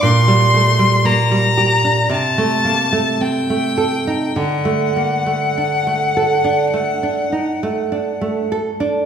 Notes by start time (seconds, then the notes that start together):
0.03 A#2 C6
0.28 G3
0.54 A3
0.79 G3
1.05 A#3 A#5
1.31 G3
1.57 G4
1.84 D4
2.09 C3 A5
2.38 A3
2.65 A#3
2.93 A3
3.21 C4 G5
3.50 A3
3.78 A4
4.07 D#4
4.36 D3 F#5
4.65 A3
4.96 A#3
5.26 A3
5.58 D4
5.87 A3
6.17 A4
6.44 D4
6.74 A3
7.03 D4
7.32 D#4
7.63 A3
7.92 D4
8.21 A3
8.52 A4
8.80 D4